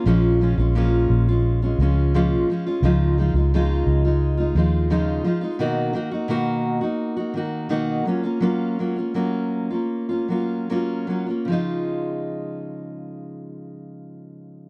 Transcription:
<<
  \new Staff \with { instrumentName = "Steel-string acoustic guitar" } { \time 4/4 \key des \mixolydian \tempo 4 = 85 <bes, f aes des' f'>8 <f aes des' f'>16 <aes des' f'>16 <bes, f aes des' f'>8. <aes des' f'>8 <aes des' f'>16 <f aes des' f'>8 <bes, f aes des' f'>8 <f aes des' f'>16 <aes des' f'>16 | <des f aes ees' f'>8 <f aes ees' f'>16 <aes ees' f'>16 <des f aes ees' f'>8. <aes ees' f'>8 <aes ees' f'>16 <f aes ees' f'>8 <des f aes ees' f'>8 <f aes ees' f'>16 <aes ees' f'>16 | <ces ees bes ees' ges'>8 <ees bes ees' ges'>16 <bes ees' ges'>16 <ces ees bes ees' ges'>8. <bes ees' ges'>8 <bes ees' ges'>16 <ees bes ees' ges'>8 <ces ees bes ees' ges'>8 <ges bes des' f'>16 <bes des' f'>16 | <ges bes des' f'>8 <ges bes des' f'>16 <bes des' f'>16 <ges bes des' f'>8. <bes des' f'>8 <bes des' f'>16 <ges bes des' f'>8 <ges bes des' f'>8 <ges bes des' f'>16 <bes des' f'>16 |
<des f aes ees' f'>1 | }
  \new Staff \with { instrumentName = "Fingered electric bass" } { \clef bass \time 4/4 \key des \mixolydian bes,,8. bes,,8. bes,,4 des,4 r8 | des,8. des,8. des,4 ees,4 r8 | r1 | r1 |
r1 | }
>>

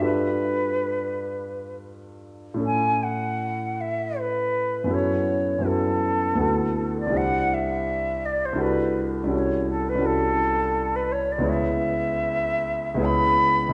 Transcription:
<<
  \new Staff \with { instrumentName = "Flute" } { \time 3/4 \key a \mixolydian \tempo 4 = 80 b'2 r4 | gis''8 fis''4 e''8 b'4 | cis''4 a'4.~ a'16 d''16 | fis''8 e''4 d''16 c''16 b'8. r16 |
cis''8 a'16 b'16 a'4~ a'16 b'16 cis''16 d''16 | e''2 b''4 | }
  \new Staff \with { instrumentName = "Grand piano" } { \time 3/4 \key a \mixolydian <g, d' f' g' a'>2. | <a, cis' e' a'>2. | <fis, b e' fis' a'>4 <fis, b e' fis' a'>4 <d, b e' fis' a'>4 | <c, d' e' g' c''>2 <c, d' e' fis' a'>4 |
<c, cis' e' fis' a'>4 <c, cis' e' fis' a'>2 | <cis, b e' gis' cis''>2 <cis, b e' gis' cis''>4 | }
>>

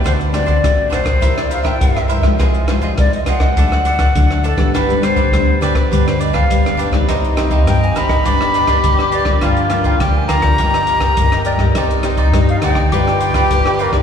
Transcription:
<<
  \new Staff \with { instrumentName = "Flute" } { \time 4/4 \key c \minor \tempo 4 = 102 c''8 d''4 c''8. d''16 f''16 g''8. r8 | r4 d''16 ees''16 fis''2 a'8 | b'8 c''4 b'8. c''16 ees''16 f''8. r8 | r4 g''16 aes''16 b''2 d''8 |
r4 g''16 aes''16 bes''2 d''8 | r4 ees''16 f''16 g''2 bes'8 | }
  \new Staff \with { instrumentName = "Cavaquinho" } { \time 4/4 \key c \minor <d' c'' d'' fis''>8 <d' c'' d'' fis''>16 <d' c'' d'' fis''>16 r8 <d' c'' d'' fis''>16 <c'' d'' fis''>16 <e' bes' c'' e''>16 <bes' c'' e''>16 <e' bes' c'' e''>16 <e' bes' c'' e''>16 r16 <bes' c'' e''>16 <e' bes' c'' e''>16 <bes' c'' e''>16 | <f' aes' c'' ees''>8 <f' aes' c'' ees''>16 <f' aes' c'' ees''>16 r8 <f' aes' c'' ees''>16 <aes' c'' ees''>16 <d' a' d'' fis''>16 <a' d'' fis''>16 <d' a' d'' fis''>16 <d' a' d'' fis''>16 r16 <a' d'' fis''>16 <d' a' d'' fis''>16 <a' d'' fis''>16 | <d' g' b' d''>8 <d' g' b' d''>16 <d' g' b' d''>16 r8 <d' g' b' d''>16 <g' b' d''>16 <d' g' b' d''>16 <g' b' d''>16 <d' g' b' d''>16 <d' g' b' d''>16 r16 <g' b' d''>16 <d' g' b' d''>16 <g' b' d''>16 | <ees' g' c'' ees''>8 <ees' g' c'' ees''>16 <ees' g' c'' ees''>16 r8 <ees' g' c'' ees''>16 <g' c'' ees''>16 <d' g' b' d''>16 <g' b' d''>16 <d' g' b' d''>16 <d' g' b' d''>16 r16 <g' b' d''>16 <d' g' b' d''>16 <g' b' d''>16 |
<f' bes' d'' g''>8 <f' bes' d'' g''>16 <f' bes' d'' g''>16 r8 <f' bes' d'' g''>16 <bes' d'' g''>16 <g' bes' ees'' g''>16 <bes' ees'' g''>16 <g' bes' ees'' g''>16 <g' bes' ees'' g''>16 r16 <bes' ees'' g''>16 <g' bes' ees'' g''>16 <bes' ees'' g''>16 | <ees' g' c'' d''>8 <ees' g' c'' d''>16 <ees' g' c'' d''>16 r8 <ees' g' c'' d''>16 <g' c'' d''>16 <f' g' b' d''>16 <g' b' d''>16 <f' g' b' d''>16 <f' g' b' d''>16 r16 <g' b' d''>16 <f' g' b' d''>16 <g' b' d''>16 | }
  \new Staff \with { instrumentName = "Tenor saxophone" } { \time 4/4 \key c \minor r1 | r1 | r1 | ees'2 g'2 |
f'4 g'4 g'4. r8 | ees'2 g'2 | }
  \new Staff \with { instrumentName = "Nylon-string guitar" } { \time 4/4 \key c \minor << { <a c' fis'>8 <a c' fis'>16 r16 <a c' fis'>4 <g bes e'>4 <g bes e'>8 r16 <f aes ees'>16~ | <f aes ees'>8 <f aes ees'>8 <f aes ees'>4 <fis a d'>4 <fis a d'>8 r16 <g b d'>16~ | <g b d'>16 <g b d'>16 <g b d'>8 <g b d'>16 r16 <g b d'>8 <g b d'>8. r16 <g b d'>16 r16 <g b d'>16 <g c' ees'>16~ | <g c' ees'>16 r16 <g c' ees'>8 <g c' ees'>8. r16 <g b d'>8. r16 <g b d'>8. <f bes d'>16~ |
<f bes d'>8 <f bes d'>8 <f bes d'>4 <ees bes ees'>8. r16 <ees bes ees'>8 r16 <ees' g' d''>16~ | <ees' g' d''>8 <ees' g' d''>8 <ees' g' d''>8. r16 <f' b' d''>4 <f' b' d''>8 r16 <ees' g' d''>16 | } \\ { d4 a,4 c4 g,4 | c4 c4 d4 a,4 | g,4 d4 g,4 d4 | c4 g,4 g,4 d4 |
g,4 d4 g,4 g,4 | c'4 g4 g4 d4 | } >> }
  \new Staff \with { instrumentName = "Fingered electric bass" } { \clef bass \time 4/4 \key c \minor d,4 a,,8 b,,8 c,4 c,8. c,16 | c,4 c,8 c,8 d,4 d,8. aes,,16 | g,,4 d,8 d,16 r16 d,4 g,,8. b,,16 | c,4 g,8 aes,,8 g,,4 g,,8. g,,16 |
g,,4 d,8 d,8 g,,4 g,,8. g,16 | c,4 g,8 d,8 g,,4 g,,8. g,,16 | }
  \new DrumStaff \with { instrumentName = "Drums" } \drummode { \time 4/4 <hh bd ss>16 hh16 <hh ss>16 <hh bd>16 <hh bd ss>8 <hh ss>16 <hh bd ss>16 <hh bd>16 <hh ss>16 hh16 <bd ss>16 <hh bd>16 <hh ss>16 hh16 <bd ss>16 | <hh bd ss>16 hh16 <hh ss>16 <hh bd>16 <hh bd ss>16 hh16 <hh ss>16 <bd ss>16 <hh bd>16 ss16 hh16 <hh bd ss>16 <hh bd>16 ss16 hh16 <bd ss>16 | <hh bd ss>16 hh16 <hh ss>16 <hh bd>16 <hh bd ss>8 <hh ss>16 <hh bd ss>16 <hh bd>16 <hh ss>16 hh16 <bd ss>16 <hh bd>16 <hh ss>16 hh16 <bd ss>16 | <hh bd ss>16 hh16 <hh ss>16 <hh bd>16 <hh bd ss>16 hh16 <hh ss>16 <bd ss>16 <hh bd>16 ss16 hh16 <hh bd ss>16 <hh bd>16 ss16 hh16 <bd ss>16 |
<hh bd ss>16 hh16 <hh ss>16 <hh bd>16 <hh bd ss>8 <hh ss>16 <hh bd ss>16 <hh bd>16 <hh ss>16 hh16 <bd ss>16 <hh bd>16 <hh ss>16 hh16 <bd ss>16 | <hh bd ss>16 hh16 <hh ss>16 <hh bd>16 <hh bd ss>16 hh16 <hh ss>16 <bd ss>16 <hh bd>16 ss16 hh16 <hh bd ss>16 <hh bd>16 ss16 hh16 <bd ss>16 | }
>>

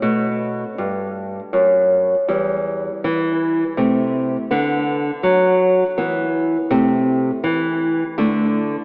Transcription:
\new Staff \with { instrumentName = "Nylon-string guitar" } { \clef bass \time 3/4 \key b \phrygian \tempo 4 = 81 << { a2. | g2 a4 | b2 b4 | a2 a4 | } \\ { b,4 g,4 fis,4 | e,4 e4 c4 | d4 fis4 e4 | c4 e4 d4 | } >> }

